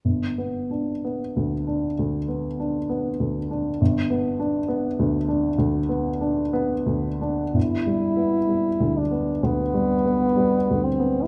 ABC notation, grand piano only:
X:1
M:4/4
L:1/8
Q:1/4=64
K:G
V:1 name="Grand piano"
(3G,,, B, D (3B, D,, D (3D,, B, D (3B, D,, D | (3G,,, B, D (3B, D,, D (3D,, B, D (3B, D,, D | (3G,,, G, B, (3G, D,, B, (3D,, G, B, (3G, D,, B, |]